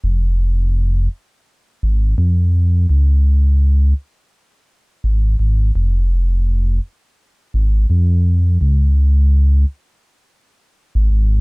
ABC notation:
X:1
M:4/4
L:1/16
Q:"Swing 16ths" 1/4=84
K:Fm
V:1 name="Detuned saw bass" clef=bass
F,,,6 z4 A,,,2 F,,4 | D,,6 z6 A,,,2 A,,,2 | F,,,6 z4 A,,,2 F,,4 | D,,6 z6 z A,,, A,,,2 |]